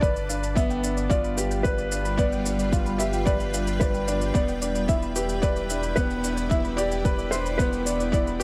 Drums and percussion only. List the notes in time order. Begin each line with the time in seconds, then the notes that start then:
0.02 kick, shaker
0.16 shaker
0.30 shaker
0.43 shaker
0.56 kick, shaker
0.70 shaker
0.84 shaker
0.97 shaker
1.11 kick, shaker
1.24 shaker
1.38 shaker
1.51 shaker
1.65 kick, shaker
1.78 shaker
1.92 shaker
2.05 shaker
2.19 kick, shaker
2.32 shaker
2.46 shaker
2.59 shaker
2.73 kick, shaker
2.86 shaker
3.00 shaker
3.13 shaker
3.27 kick, shaker
3.40 shaker
3.54 shaker
3.67 shaker
3.81 kick, shaker
3.94 shaker
4.08 shaker
4.21 shaker
4.35 kick, shaker
4.48 shaker
4.62 shaker
4.75 shaker
4.89 kick, shaker
5.02 shaker
5.16 shaker
5.29 shaker
5.43 kick, shaker
5.56 shaker
5.70 shaker
5.83 shaker
5.97 kick, shaker
6.10 shaker
6.24 shaker
6.37 shaker
6.51 kick, shaker
6.65 shaker
6.78 shaker
6.92 shaker
7.05 kick, shaker
7.19 shaker
7.32 shaker
7.46 shaker
7.59 kick, shaker
7.73 shaker
7.86 shaker
8.00 shaker
8.13 kick, shaker
8.27 shaker